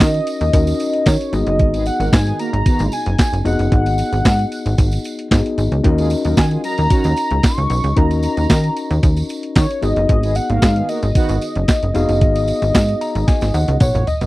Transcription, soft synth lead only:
0.00 1.09 D#5 loud
1.07 1.35 C#5 loud
1.34 1.86 D#5 loud
1.87 2.14 F#5 loud
2.13 2.39 G#5 loud
2.40 2.94 A#5 loud
2.93 3.45 G#5 loud
3.46 5.54 F#5 loud
6.38 6.50 G#5 medium
6.65 7.46 A#5 loud
7.44 7.99 C#6 loud
7.97 8.24 A#5 loud
8.24 9.26 A#5 loud
9.56 9.84 C#5 loud
9.83 10.37 D#5 loud
10.36 10.51 F#5 loud
10.50 10.90 F5 loud
10.89 11.02 D#5 loud
11.03 13.77 D#5 loud
13.81 14.09 C#5 loud
14.07 14.26 D#5 loud

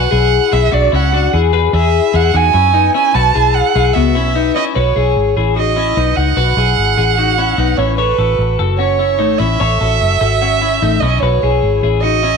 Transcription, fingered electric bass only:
0.12 0.38 B1 loud
0.53 0.70 B1 loud
0.73 0.90 B1 medium
0.93 1.27 C#2 medium
1.34 1.68 E2 loud
1.73 1.99 E2 loud
2.14 2.31 E2 loud
2.34 2.51 E2 medium
2.54 2.88 F#2 medium
3.15 3.32 B1 loud
3.36 3.61 B1 medium
3.76 3.92 B1 medium
3.96 4.16 C#2 medium
4.16 4.50 B1 medium
4.76 4.93 B1 medium
4.96 5.13 B1 medium
5.16 5.33 G#1 medium
5.37 5.94 A1 medium
5.97 6.14 B1 medium
6.17 6.34 C#2 medium
6.37 6.54 B1 loud
6.57 6.74 B1 loud
6.77 6.95 G#1 medium
6.97 7.55 A1 medium
7.58 7.75 B1 medium
7.78 8.13 A1 medium
8.18 8.36 A1 medium
8.39 8.56 A1 medium
8.59 9.20 F#1 medium
9.20 9.37 G#1 medium
9.40 9.57 A1 medium
9.61 9.78 A1 loud
9.81 9.98 A1 medium
10.01 10.18 F#1 medium
10.21 10.79 G#1 medium
10.82 10.99 A1 medium
11.02 11.19 B1 medium
11.22 11.40 B1 medium
11.43 11.60 B1 medium
11.63 11.80 G#1 medium
11.83 12.37 A1 medium

